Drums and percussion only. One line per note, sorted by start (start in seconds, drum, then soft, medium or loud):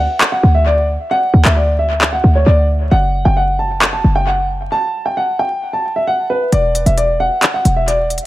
0.21 clap loud
1.45 clap medium
2.01 clap loud
3.82 clap loud
6.52 closed hi-hat medium
6.75 closed hi-hat medium
6.86 closed hi-hat soft
6.98 closed hi-hat medium
7.42 clap loud
7.42 closed hi-hat medium
7.65 closed hi-hat medium
7.88 closed hi-hat medium
8.10 closed hi-hat soft
8.18 closed hi-hat medium